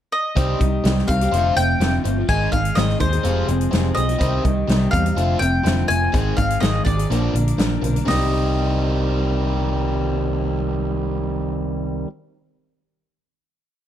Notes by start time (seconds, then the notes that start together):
0.12 D#5
0.36 C2 C3 D#3 G3 C4 D#4 G4, kick, closed hi-hat
0.59 C2 C3 D#3 G3 C4 D#4 G4, kick, closed hi-hat
0.84 C2 C3 D#3 G3 C4 D#4 G4, snare, closed hi-hat
0.98 snare
1.07 C2 C3 D#3 G3 C4 D#4 F5, kick, closed hi-hat
1.12 G4
1.21 C4 D#4 G4, closed hi-hat
1.32 F1 F2 D3 F3 A3 C4 F4, closed hi-hat
1.57 F1 F3 A3 C4 F4 G5, closed hi-hat
1.80 F1 F2 D3 F3 A3 C4 F4, snare, closed hi-hat
2.05 G1 F3 A3 C4 F4, closed hi-hat
2.17 F3 A3 C4 F4
2.28 G#1 G#2 D#3 G#3 C4 D#4 G#4 G#5, kick, closed hi-hat
2.52 G#1 G#2 D#3 G#3 C4 D#4 G#4 F5, kick, closed hi-hat
2.65 closed hi-hat
2.75 G#1 G#2 D#3 G#3 C4 D#4 G#4 D#5, snare, closed hi-hat
2.89 snare
3.00 D#2 G#2 D#3 G#3 C4 D#4 G#4 C5, kick, closed hi-hat
3.12 G#3 C4 D#4 G#4, closed hi-hat
3.24 F1 F2 C3 F3 G#3 C4 F4 G#4, closed hi-hat
3.48 F1 F3 G#3 C4 G#4, closed hi-hat
3.61 closed hi-hat
3.73 F1 F2 C3 F3 G#3 C4 G#4, snare, closed hi-hat
3.95 B1 F3 G#3 C4 D#5, closed hi-hat
3.99 G#4
4.09 F3 G#3 C4 G#4, closed hi-hat
4.19 C2 C3 D#3 G3 C4 D#4 G4, kick, closed hi-hat
4.44 C2 C3 D#3 G3 C4 D#4, kick, closed hi-hat
4.48 G4
4.68 C2 C3 D#3 G3 C4 D#4 G4, snare, closed hi-hat
4.91 E2 C3 D#3 G3 C4 D#4 F5, kick, closed hi-hat
4.95 G4
5.05 C4 D#4 G4, closed hi-hat
5.16 F1 F2 D3 F3 A3 C4 F4, closed hi-hat
5.39 F1 F3 A3 C4 G5, closed hi-hat
5.43 F4
5.65 F1 F2 D3 F3 A3 C4 F4, snare, closed hi-hat
5.88 F1 F3 A3 C4 F4 G#5, closed hi-hat
6.00 F3 A3 C4 F4
6.12 G#1 G#2 D#3 G#3 C4 D#4 G#4, kick, closed hi-hat
6.36 G#1 G#2 D#3 G#3 C4 D#4 G#4 F5, kick, closed hi-hat
6.50 closed hi-hat
6.60 G#1 G#2 D#3 G#3 C4 D#4 G#4 D#5, snare, closed hi-hat
6.85 G#1 G#2 D#3 G#3 C4 D#4 G#4 D5, kick, closed hi-hat
6.97 G#3 C4 D#4 G#4, closed hi-hat
7.10 A#1 A#2 D3 F3 A#3 D4 A#4, closed hi-hat
7.33 A#1 A#2 D3 F3 A#3 D4 A#4, closed hi-hat
7.48 closed hi-hat
7.57 A#1 A#2 D3 F3 A#3 D4 A#4, snare, closed hi-hat
7.82 B1 A#2 D3 F3 A#3 D4 A#4, closed hi-hat
7.93 A#3 D4 A#4, closed hi-hat
8.03 C2 C3 D#3
8.07 G3 C4 D#4 D#5, snare, floor tom, open hi-hat
8.11 G4